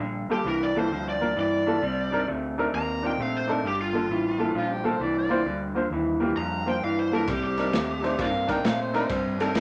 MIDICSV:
0, 0, Header, 1, 8, 480
1, 0, Start_track
1, 0, Time_signature, 4, 2, 24, 8
1, 0, Key_signature, -2, "minor"
1, 0, Tempo, 454890
1, 10131, End_track
2, 0, Start_track
2, 0, Title_t, "Harmonica"
2, 0, Program_c, 0, 22
2, 4826, Note_on_c, 0, 65, 93
2, 4986, Note_on_c, 0, 67, 76
2, 5002, Note_off_c, 0, 65, 0
2, 5152, Note_on_c, 0, 72, 71
2, 5168, Note_off_c, 0, 67, 0
2, 5309, Note_on_c, 0, 74, 72
2, 5325, Note_off_c, 0, 72, 0
2, 5450, Note_off_c, 0, 74, 0
2, 5467, Note_on_c, 0, 74, 74
2, 5920, Note_off_c, 0, 74, 0
2, 8658, Note_on_c, 0, 72, 67
2, 8658, Note_on_c, 0, 74, 67
2, 8658, Note_on_c, 0, 77, 95
2, 8730, Note_off_c, 0, 72, 0
2, 8735, Note_off_c, 0, 74, 0
2, 8958, Note_off_c, 0, 77, 0
2, 8980, Note_on_c, 0, 79, 77
2, 9124, Note_off_c, 0, 79, 0
2, 9149, Note_on_c, 0, 77, 81
2, 9288, Note_off_c, 0, 77, 0
2, 9299, Note_on_c, 0, 72, 67
2, 9443, Note_off_c, 0, 72, 0
2, 9465, Note_on_c, 0, 72, 84
2, 9708, Note_off_c, 0, 72, 0
2, 10131, End_track
3, 0, Start_track
3, 0, Title_t, "Lead electric guitar"
3, 0, Program_c, 1, 29
3, 347, Note_on_c, 1, 67, 71
3, 489, Note_off_c, 1, 67, 0
3, 510, Note_on_c, 1, 70, 64
3, 650, Note_off_c, 1, 70, 0
3, 664, Note_on_c, 1, 74, 78
3, 808, Note_off_c, 1, 74, 0
3, 836, Note_on_c, 1, 72, 64
3, 1129, Note_off_c, 1, 72, 0
3, 1152, Note_on_c, 1, 74, 65
3, 1448, Note_off_c, 1, 74, 0
3, 1471, Note_on_c, 1, 74, 71
3, 2388, Note_off_c, 1, 74, 0
3, 2905, Note_on_c, 1, 82, 96
3, 3204, Note_off_c, 1, 82, 0
3, 3234, Note_on_c, 1, 79, 76
3, 3397, Note_off_c, 1, 79, 0
3, 3397, Note_on_c, 1, 77, 78
3, 3535, Note_off_c, 1, 77, 0
3, 3553, Note_on_c, 1, 72, 69
3, 3715, Note_off_c, 1, 72, 0
3, 3715, Note_on_c, 1, 70, 76
3, 3854, Note_off_c, 1, 70, 0
3, 3874, Note_on_c, 1, 67, 82
3, 4014, Note_off_c, 1, 67, 0
3, 4023, Note_on_c, 1, 65, 65
3, 4944, Note_off_c, 1, 65, 0
3, 6726, Note_on_c, 1, 82, 71
3, 7033, Note_off_c, 1, 82, 0
3, 7062, Note_on_c, 1, 79, 68
3, 7214, Note_off_c, 1, 79, 0
3, 7214, Note_on_c, 1, 77, 69
3, 7362, Note_off_c, 1, 77, 0
3, 7377, Note_on_c, 1, 72, 65
3, 7523, Note_off_c, 1, 72, 0
3, 7542, Note_on_c, 1, 70, 64
3, 7699, Note_off_c, 1, 70, 0
3, 7699, Note_on_c, 1, 67, 84
3, 7835, Note_off_c, 1, 67, 0
3, 7848, Note_on_c, 1, 67, 76
3, 8773, Note_off_c, 1, 67, 0
3, 9943, Note_on_c, 1, 70, 84
3, 10105, Note_off_c, 1, 70, 0
3, 10131, End_track
4, 0, Start_track
4, 0, Title_t, "Grand piano"
4, 0, Program_c, 2, 0
4, 309, Note_on_c, 2, 58, 60
4, 320, Note_on_c, 2, 65, 54
4, 327, Note_on_c, 2, 69, 71
4, 394, Note_off_c, 2, 58, 0
4, 399, Note_off_c, 2, 65, 0
4, 403, Note_off_c, 2, 69, 0
4, 794, Note_on_c, 2, 58, 62
4, 806, Note_on_c, 2, 65, 57
4, 813, Note_on_c, 2, 69, 69
4, 877, Note_off_c, 2, 58, 0
4, 883, Note_off_c, 2, 65, 0
4, 886, Note_off_c, 2, 69, 0
4, 1272, Note_on_c, 2, 58, 66
4, 1278, Note_on_c, 2, 65, 56
4, 1284, Note_on_c, 2, 70, 75
4, 1356, Note_off_c, 2, 58, 0
4, 1359, Note_off_c, 2, 65, 0
4, 1362, Note_off_c, 2, 70, 0
4, 1756, Note_on_c, 2, 58, 63
4, 1762, Note_on_c, 2, 65, 62
4, 1772, Note_on_c, 2, 69, 84
4, 1839, Note_off_c, 2, 58, 0
4, 1841, Note_off_c, 2, 65, 0
4, 1846, Note_off_c, 2, 69, 0
4, 2236, Note_on_c, 2, 62, 73
4, 2247, Note_on_c, 2, 63, 65
4, 2257, Note_on_c, 2, 70, 80
4, 2319, Note_off_c, 2, 62, 0
4, 2324, Note_off_c, 2, 63, 0
4, 2329, Note_off_c, 2, 70, 0
4, 2721, Note_on_c, 2, 62, 74
4, 2729, Note_on_c, 2, 63, 70
4, 2737, Note_on_c, 2, 70, 94
4, 2801, Note_off_c, 2, 62, 0
4, 2805, Note_off_c, 2, 63, 0
4, 2809, Note_off_c, 2, 70, 0
4, 3193, Note_on_c, 2, 62, 68
4, 3201, Note_on_c, 2, 63, 62
4, 3211, Note_on_c, 2, 65, 69
4, 3278, Note_off_c, 2, 62, 0
4, 3282, Note_off_c, 2, 63, 0
4, 3286, Note_off_c, 2, 65, 0
4, 3668, Note_on_c, 2, 62, 75
4, 3678, Note_on_c, 2, 63, 64
4, 3687, Note_on_c, 2, 69, 75
4, 3755, Note_off_c, 2, 62, 0
4, 3760, Note_off_c, 2, 63, 0
4, 3765, Note_off_c, 2, 69, 0
4, 4145, Note_on_c, 2, 58, 66
4, 4154, Note_on_c, 2, 65, 50
4, 4165, Note_on_c, 2, 69, 68
4, 4233, Note_off_c, 2, 58, 0
4, 4238, Note_off_c, 2, 65, 0
4, 4243, Note_off_c, 2, 69, 0
4, 4625, Note_on_c, 2, 58, 67
4, 4632, Note_on_c, 2, 65, 58
4, 4641, Note_on_c, 2, 69, 72
4, 4713, Note_off_c, 2, 58, 0
4, 4717, Note_off_c, 2, 65, 0
4, 4721, Note_off_c, 2, 69, 0
4, 5104, Note_on_c, 2, 58, 80
4, 5112, Note_on_c, 2, 65, 72
4, 5121, Note_on_c, 2, 69, 89
4, 5192, Note_off_c, 2, 58, 0
4, 5197, Note_off_c, 2, 65, 0
4, 5201, Note_off_c, 2, 69, 0
4, 5583, Note_on_c, 2, 58, 76
4, 5593, Note_on_c, 2, 65, 76
4, 5600, Note_on_c, 2, 72, 89
4, 5672, Note_off_c, 2, 58, 0
4, 5677, Note_off_c, 2, 65, 0
4, 5680, Note_off_c, 2, 72, 0
4, 6064, Note_on_c, 2, 58, 67
4, 6070, Note_on_c, 2, 65, 68
4, 6078, Note_on_c, 2, 72, 79
4, 6152, Note_off_c, 2, 58, 0
4, 6155, Note_off_c, 2, 65, 0
4, 6159, Note_off_c, 2, 72, 0
4, 6543, Note_on_c, 2, 58, 82
4, 6550, Note_on_c, 2, 65, 69
4, 6559, Note_on_c, 2, 67, 76
4, 6631, Note_off_c, 2, 58, 0
4, 6635, Note_off_c, 2, 65, 0
4, 6639, Note_off_c, 2, 67, 0
4, 7023, Note_on_c, 2, 58, 60
4, 7032, Note_on_c, 2, 65, 56
4, 7040, Note_on_c, 2, 72, 74
4, 7111, Note_off_c, 2, 58, 0
4, 7116, Note_off_c, 2, 65, 0
4, 7119, Note_off_c, 2, 72, 0
4, 7508, Note_on_c, 2, 58, 69
4, 7516, Note_on_c, 2, 65, 62
4, 7526, Note_on_c, 2, 69, 74
4, 7593, Note_off_c, 2, 58, 0
4, 7597, Note_off_c, 2, 65, 0
4, 7602, Note_off_c, 2, 69, 0
4, 7994, Note_on_c, 2, 62, 59
4, 8006, Note_on_c, 2, 63, 54
4, 8015, Note_on_c, 2, 70, 69
4, 8076, Note_off_c, 2, 62, 0
4, 8082, Note_off_c, 2, 63, 0
4, 8086, Note_off_c, 2, 70, 0
4, 8466, Note_on_c, 2, 62, 58
4, 8473, Note_on_c, 2, 63, 53
4, 8483, Note_on_c, 2, 72, 68
4, 8552, Note_off_c, 2, 62, 0
4, 8555, Note_off_c, 2, 63, 0
4, 8560, Note_off_c, 2, 72, 0
4, 8944, Note_on_c, 2, 62, 78
4, 8953, Note_on_c, 2, 63, 70
4, 8964, Note_on_c, 2, 70, 90
4, 9030, Note_off_c, 2, 62, 0
4, 9035, Note_off_c, 2, 63, 0
4, 9040, Note_off_c, 2, 70, 0
4, 9430, Note_on_c, 2, 62, 82
4, 9435, Note_on_c, 2, 63, 77
4, 9447, Note_on_c, 2, 70, 95
4, 9513, Note_off_c, 2, 62, 0
4, 9516, Note_off_c, 2, 63, 0
4, 9522, Note_off_c, 2, 70, 0
4, 9903, Note_on_c, 2, 62, 59
4, 9916, Note_on_c, 2, 63, 56
4, 9925, Note_on_c, 2, 69, 74
4, 9989, Note_off_c, 2, 62, 0
4, 9996, Note_off_c, 2, 63, 0
4, 10000, Note_off_c, 2, 69, 0
4, 10131, End_track
5, 0, Start_track
5, 0, Title_t, "Clean electric guitar"
5, 0, Program_c, 3, 27
5, 1, Note_on_c, 3, 43, 62
5, 4, Note_on_c, 3, 50, 84
5, 284, Note_off_c, 3, 43, 0
5, 286, Note_off_c, 3, 50, 0
5, 316, Note_on_c, 3, 43, 78
5, 322, Note_on_c, 3, 50, 67
5, 463, Note_off_c, 3, 43, 0
5, 466, Note_off_c, 3, 50, 0
5, 479, Note_on_c, 3, 43, 67
5, 486, Note_on_c, 3, 52, 79
5, 764, Note_off_c, 3, 43, 0
5, 767, Note_off_c, 3, 52, 0
5, 797, Note_on_c, 3, 43, 66
5, 803, Note_on_c, 3, 52, 72
5, 944, Note_off_c, 3, 43, 0
5, 947, Note_off_c, 3, 52, 0
5, 967, Note_on_c, 3, 43, 77
5, 973, Note_on_c, 3, 53, 84
5, 1248, Note_off_c, 3, 43, 0
5, 1251, Note_off_c, 3, 53, 0
5, 1278, Note_on_c, 3, 43, 62
5, 1283, Note_on_c, 3, 53, 64
5, 1425, Note_off_c, 3, 43, 0
5, 1427, Note_off_c, 3, 53, 0
5, 1442, Note_on_c, 3, 43, 60
5, 1444, Note_on_c, 3, 52, 75
5, 1726, Note_off_c, 3, 43, 0
5, 1727, Note_off_c, 3, 52, 0
5, 1754, Note_on_c, 3, 43, 73
5, 1761, Note_on_c, 3, 52, 79
5, 1903, Note_off_c, 3, 43, 0
5, 1907, Note_off_c, 3, 52, 0
5, 1918, Note_on_c, 3, 48, 76
5, 1928, Note_on_c, 3, 55, 86
5, 2204, Note_off_c, 3, 48, 0
5, 2209, Note_off_c, 3, 55, 0
5, 2242, Note_on_c, 3, 48, 71
5, 2249, Note_on_c, 3, 55, 85
5, 2387, Note_off_c, 3, 48, 0
5, 2391, Note_off_c, 3, 55, 0
5, 2406, Note_on_c, 3, 48, 66
5, 2410, Note_on_c, 3, 57, 73
5, 2688, Note_off_c, 3, 48, 0
5, 2690, Note_off_c, 3, 57, 0
5, 2729, Note_on_c, 3, 48, 62
5, 2735, Note_on_c, 3, 57, 77
5, 2871, Note_off_c, 3, 48, 0
5, 2874, Note_off_c, 3, 57, 0
5, 2896, Note_on_c, 3, 48, 86
5, 2898, Note_on_c, 3, 58, 94
5, 3173, Note_off_c, 3, 48, 0
5, 3174, Note_off_c, 3, 58, 0
5, 3206, Note_on_c, 3, 48, 70
5, 3214, Note_on_c, 3, 58, 71
5, 3349, Note_off_c, 3, 48, 0
5, 3353, Note_off_c, 3, 58, 0
5, 3375, Note_on_c, 3, 48, 76
5, 3376, Note_on_c, 3, 57, 71
5, 3653, Note_off_c, 3, 48, 0
5, 3653, Note_off_c, 3, 57, 0
5, 3689, Note_on_c, 3, 48, 77
5, 3697, Note_on_c, 3, 57, 77
5, 3831, Note_off_c, 3, 48, 0
5, 3835, Note_off_c, 3, 57, 0
5, 3848, Note_on_c, 3, 43, 68
5, 3851, Note_on_c, 3, 50, 84
5, 4129, Note_off_c, 3, 43, 0
5, 4131, Note_off_c, 3, 50, 0
5, 4167, Note_on_c, 3, 43, 71
5, 4171, Note_on_c, 3, 50, 83
5, 4310, Note_off_c, 3, 43, 0
5, 4312, Note_off_c, 3, 50, 0
5, 4334, Note_on_c, 3, 43, 72
5, 4334, Note_on_c, 3, 52, 85
5, 4612, Note_off_c, 3, 43, 0
5, 4612, Note_off_c, 3, 52, 0
5, 4637, Note_on_c, 3, 43, 59
5, 4645, Note_on_c, 3, 52, 71
5, 4785, Note_off_c, 3, 43, 0
5, 4789, Note_off_c, 3, 52, 0
5, 4801, Note_on_c, 3, 43, 74
5, 4806, Note_on_c, 3, 53, 92
5, 5085, Note_off_c, 3, 43, 0
5, 5088, Note_off_c, 3, 53, 0
5, 5119, Note_on_c, 3, 43, 71
5, 5126, Note_on_c, 3, 53, 71
5, 5265, Note_off_c, 3, 43, 0
5, 5269, Note_off_c, 3, 53, 0
5, 5284, Note_on_c, 3, 43, 68
5, 5289, Note_on_c, 3, 52, 82
5, 5567, Note_off_c, 3, 43, 0
5, 5569, Note_off_c, 3, 52, 0
5, 5602, Note_on_c, 3, 43, 70
5, 5604, Note_on_c, 3, 52, 81
5, 5747, Note_off_c, 3, 43, 0
5, 5748, Note_off_c, 3, 52, 0
5, 5763, Note_on_c, 3, 43, 77
5, 5768, Note_on_c, 3, 50, 68
5, 6046, Note_off_c, 3, 43, 0
5, 6048, Note_off_c, 3, 50, 0
5, 6083, Note_on_c, 3, 43, 67
5, 6087, Note_on_c, 3, 50, 79
5, 6227, Note_off_c, 3, 43, 0
5, 6229, Note_off_c, 3, 50, 0
5, 6249, Note_on_c, 3, 43, 68
5, 6254, Note_on_c, 3, 52, 78
5, 6529, Note_off_c, 3, 43, 0
5, 6531, Note_off_c, 3, 52, 0
5, 6563, Note_on_c, 3, 43, 59
5, 6569, Note_on_c, 3, 52, 74
5, 6707, Note_off_c, 3, 43, 0
5, 6710, Note_off_c, 3, 52, 0
5, 6729, Note_on_c, 3, 43, 82
5, 6734, Note_on_c, 3, 53, 83
5, 7008, Note_off_c, 3, 43, 0
5, 7011, Note_off_c, 3, 53, 0
5, 7037, Note_on_c, 3, 43, 65
5, 7044, Note_on_c, 3, 53, 64
5, 7183, Note_off_c, 3, 43, 0
5, 7187, Note_off_c, 3, 53, 0
5, 7210, Note_on_c, 3, 43, 67
5, 7214, Note_on_c, 3, 52, 77
5, 7489, Note_off_c, 3, 43, 0
5, 7491, Note_off_c, 3, 52, 0
5, 7527, Note_on_c, 3, 43, 64
5, 7528, Note_on_c, 3, 52, 77
5, 7668, Note_off_c, 3, 43, 0
5, 7669, Note_off_c, 3, 52, 0
5, 7688, Note_on_c, 3, 48, 72
5, 7691, Note_on_c, 3, 55, 86
5, 7967, Note_off_c, 3, 48, 0
5, 7969, Note_off_c, 3, 55, 0
5, 8004, Note_on_c, 3, 48, 61
5, 8011, Note_on_c, 3, 55, 74
5, 8146, Note_off_c, 3, 48, 0
5, 8150, Note_off_c, 3, 55, 0
5, 8162, Note_on_c, 3, 48, 75
5, 8163, Note_on_c, 3, 57, 82
5, 8444, Note_off_c, 3, 48, 0
5, 8444, Note_off_c, 3, 57, 0
5, 8480, Note_on_c, 3, 48, 69
5, 8481, Note_on_c, 3, 57, 76
5, 8624, Note_off_c, 3, 48, 0
5, 8625, Note_off_c, 3, 57, 0
5, 8641, Note_on_c, 3, 48, 93
5, 8647, Note_on_c, 3, 58, 85
5, 8923, Note_off_c, 3, 48, 0
5, 8926, Note_off_c, 3, 58, 0
5, 8961, Note_on_c, 3, 48, 55
5, 8966, Note_on_c, 3, 58, 64
5, 9104, Note_off_c, 3, 48, 0
5, 9107, Note_off_c, 3, 58, 0
5, 9124, Note_on_c, 3, 48, 66
5, 9130, Note_on_c, 3, 57, 88
5, 9404, Note_off_c, 3, 48, 0
5, 9407, Note_off_c, 3, 57, 0
5, 9440, Note_on_c, 3, 48, 76
5, 9442, Note_on_c, 3, 57, 72
5, 9584, Note_off_c, 3, 48, 0
5, 9585, Note_off_c, 3, 57, 0
5, 9603, Note_on_c, 3, 48, 64
5, 9609, Note_on_c, 3, 55, 77
5, 9883, Note_off_c, 3, 48, 0
5, 9886, Note_off_c, 3, 55, 0
5, 9920, Note_on_c, 3, 48, 71
5, 9929, Note_on_c, 3, 55, 66
5, 10063, Note_off_c, 3, 48, 0
5, 10068, Note_off_c, 3, 55, 0
5, 10080, Note_on_c, 3, 48, 68
5, 10087, Note_on_c, 3, 57, 81
5, 10131, Note_off_c, 3, 48, 0
5, 10131, Note_off_c, 3, 57, 0
5, 10131, End_track
6, 0, Start_track
6, 0, Title_t, "Fingered electric bass"
6, 0, Program_c, 4, 33
6, 0, Note_on_c, 4, 34, 81
6, 286, Note_off_c, 4, 34, 0
6, 469, Note_on_c, 4, 36, 86
6, 940, Note_off_c, 4, 36, 0
6, 948, Note_on_c, 4, 38, 70
6, 1420, Note_off_c, 4, 38, 0
6, 1433, Note_on_c, 4, 43, 84
6, 1903, Note_off_c, 4, 43, 0
6, 1913, Note_on_c, 4, 36, 75
6, 2383, Note_off_c, 4, 36, 0
6, 2402, Note_on_c, 4, 38, 73
6, 2868, Note_off_c, 4, 38, 0
6, 2879, Note_on_c, 4, 39, 75
6, 3346, Note_off_c, 4, 39, 0
6, 3354, Note_on_c, 4, 34, 92
6, 3823, Note_off_c, 4, 34, 0
6, 3835, Note_on_c, 4, 31, 78
6, 4304, Note_off_c, 4, 31, 0
6, 4313, Note_on_c, 4, 33, 88
6, 4782, Note_off_c, 4, 33, 0
6, 4795, Note_on_c, 4, 34, 64
6, 5264, Note_off_c, 4, 34, 0
6, 5272, Note_on_c, 4, 36, 90
6, 5741, Note_off_c, 4, 36, 0
6, 5757, Note_on_c, 4, 38, 80
6, 6224, Note_off_c, 4, 38, 0
6, 6229, Note_on_c, 4, 39, 89
6, 6700, Note_off_c, 4, 39, 0
6, 6716, Note_on_c, 4, 41, 78
6, 7183, Note_off_c, 4, 41, 0
6, 7198, Note_on_c, 4, 43, 85
6, 7663, Note_off_c, 4, 43, 0
6, 7679, Note_on_c, 4, 36, 74
6, 8144, Note_off_c, 4, 36, 0
6, 8156, Note_on_c, 4, 39, 78
6, 8622, Note_off_c, 4, 39, 0
6, 8639, Note_on_c, 4, 43, 73
6, 9103, Note_off_c, 4, 43, 0
6, 9112, Note_on_c, 4, 46, 89
6, 9579, Note_off_c, 4, 46, 0
6, 9594, Note_on_c, 4, 43, 82
6, 10060, Note_off_c, 4, 43, 0
6, 10072, Note_on_c, 4, 41, 77
6, 10131, Note_off_c, 4, 41, 0
6, 10131, End_track
7, 0, Start_track
7, 0, Title_t, "Muted fingered electric bass strokes"
7, 306, Note_on_c, 9, 29, 37
7, 411, Note_off_c, 9, 29, 0
7, 10131, End_track
8, 0, Start_track
8, 0, Title_t, "Drums"
8, 7679, Note_on_c, 9, 36, 113
8, 7680, Note_on_c, 9, 51, 74
8, 7687, Note_on_c, 9, 38, 32
8, 7784, Note_off_c, 9, 36, 0
8, 7786, Note_off_c, 9, 51, 0
8, 7792, Note_off_c, 9, 38, 0
8, 7993, Note_on_c, 9, 51, 54
8, 7999, Note_on_c, 9, 38, 33
8, 8099, Note_off_c, 9, 51, 0
8, 8105, Note_off_c, 9, 38, 0
8, 8158, Note_on_c, 9, 51, 78
8, 8164, Note_on_c, 9, 38, 102
8, 8263, Note_off_c, 9, 51, 0
8, 8270, Note_off_c, 9, 38, 0
8, 8483, Note_on_c, 9, 51, 48
8, 8490, Note_on_c, 9, 38, 26
8, 8589, Note_off_c, 9, 51, 0
8, 8595, Note_off_c, 9, 38, 0
8, 8640, Note_on_c, 9, 36, 99
8, 8642, Note_on_c, 9, 51, 77
8, 8649, Note_on_c, 9, 38, 35
8, 8746, Note_off_c, 9, 36, 0
8, 8748, Note_off_c, 9, 51, 0
8, 8754, Note_off_c, 9, 38, 0
8, 8955, Note_on_c, 9, 36, 74
8, 8958, Note_on_c, 9, 51, 63
8, 8965, Note_on_c, 9, 38, 31
8, 9061, Note_off_c, 9, 36, 0
8, 9064, Note_off_c, 9, 51, 0
8, 9070, Note_off_c, 9, 38, 0
8, 9122, Note_on_c, 9, 51, 82
8, 9128, Note_on_c, 9, 38, 114
8, 9228, Note_off_c, 9, 51, 0
8, 9234, Note_off_c, 9, 38, 0
8, 9435, Note_on_c, 9, 51, 56
8, 9442, Note_on_c, 9, 38, 30
8, 9541, Note_off_c, 9, 51, 0
8, 9547, Note_off_c, 9, 38, 0
8, 9599, Note_on_c, 9, 36, 115
8, 9599, Note_on_c, 9, 51, 94
8, 9606, Note_on_c, 9, 38, 35
8, 9704, Note_off_c, 9, 36, 0
8, 9705, Note_off_c, 9, 51, 0
8, 9711, Note_off_c, 9, 38, 0
8, 9920, Note_on_c, 9, 51, 60
8, 9926, Note_on_c, 9, 38, 33
8, 10025, Note_off_c, 9, 51, 0
8, 10032, Note_off_c, 9, 38, 0
8, 10077, Note_on_c, 9, 51, 92
8, 10083, Note_on_c, 9, 38, 121
8, 10131, Note_off_c, 9, 38, 0
8, 10131, Note_off_c, 9, 51, 0
8, 10131, End_track
0, 0, End_of_file